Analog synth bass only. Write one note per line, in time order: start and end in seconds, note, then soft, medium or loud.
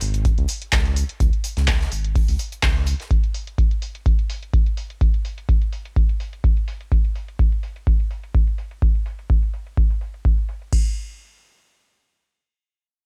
0.01 0.33 G#1 medium
0.38 0.46 C#2 medium
0.73 1.04 C#2 loud
1.20 1.30 C#2 loud
1.57 1.87 C#2 medium
1.92 2.23 G#1 medium
2.29 2.37 C#2 medium
2.63 2.95 C#2 medium